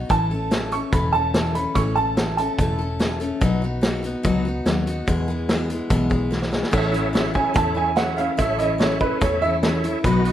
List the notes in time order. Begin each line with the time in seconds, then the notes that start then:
Already playing: D#4 F#4
0.09 A1 A2 E3 A3 C#4 A4 A5, kick, closed hi-hat
0.31 A3 C#4 A4
0.51 E3 A3 C#4 A4, snare, closed hi-hat
0.72 A3 C#4 A4 C#6, closed hi-hat
0.92 E1 A2 E3 A3 C#4 A4 B5, kick, closed hi-hat
1.13 A3 C#4 A4 A5
1.34 E3 A3 C#4 A4, snare, closed hi-hat
1.55 A3 C#4 A4 B5, closed hi-hat
1.75 A1 A2 E3 A3 C#4 A4 C#6, kick, closed hi-hat
1.96 A3 C#4 A4 A5
2.17 E3 A3 C#4 A4, snare, closed hi-hat
2.37 C#4 A4 A5, closed hi-hat
2.42 A3
2.58 E1 A2 E3 A3 C#4 A4, kick, closed hi-hat
2.79 A3 C#4 A4
2.99 E3 A3 C#4 A4, snare, closed hi-hat
3.20 A3 C#4 A4, closed hi-hat
3.41 B1 B2 F#3 B3 D#4 F#4, kick, closed hi-hat
3.62 B3 D#4 F#4
3.81 F#3 B3 D#4 F#4, snare, closed hi-hat
4.03 B3 D#4 F#4, closed hi-hat
4.23 C#2 B2 F#3 B3 D#4 F#4, kick, closed hi-hat
4.45 B3 D#4 F#4
4.66 D#2 F#3 B3 D#4 F#4, snare, closed hi-hat
4.87 B3 D#4 F#4, closed hi-hat
5.07 E2 B2 E3 G#3 B3 G#4, kick, closed hi-hat
5.28 E3 G#3 B3 G#4
5.49 E3 G#3 B3 G#4, snare, closed hi-hat
5.70 E3 G#3 B3 G#4, closed hi-hat
5.90 B1 E2 B2 E3 G#3 B3 G#4, kick, closed hi-hat
6.10 E3 G#3 B3 G#4, kick
6.31 E3 G#3 B3 G#4, snare
6.42 snare
6.52 E3 G#3 B3 G#4, snare
6.63 snare
6.71 A1 A2 E3 A3 C#4 E4 A4 C#5 E5, kick, crash
6.92 A3 C#4 E4, closed hi-hat
7.13 E3 A3 C#4 E4 A4 C#5 E5, snare, closed hi-hat
7.34 A3 C#4 E4 A4 C#5 E5 G#5, kick
7.54 E2 A2 E3 A3 C#4 E4 A4 C#5 E5 A5, kick, closed hi-hat
7.75 A3 C#4 E4 G#5
7.96 E3 A3 C#4 E4 A4 C#5 E5 F#5, snare, closed hi-hat
8.17 A3 C#4 E4 F5, closed hi-hat
8.37 A1 A2 E3 A3 C#4 E4 A4 C#5 E5, kick, closed hi-hat
8.59 A3 C#4 E4 D#5, closed hi-hat
8.78 E3 A3 C#4 E4 A4 C#5 E5, snare, closed hi-hat
9.00 A3 C#4 E4 A4 B4 C#5 E5, kick
9.21 E2 A2 E3 A3 C#4 E4 A4 C#5 E5, kick, closed hi-hat
9.42 A3 C#4 E4 E5
9.63 E3 A3 C#4 E4 A4 C#5 E5, snare, closed hi-hat
9.84 A3 C#4 E4, closed hi-hat
10.04 B1 B2 F#3 B3 D#4 F#4 B4 D#5 B5, kick, closed hi-hat
10.25 D#4 F#4, closed hi-hat
10.29 B3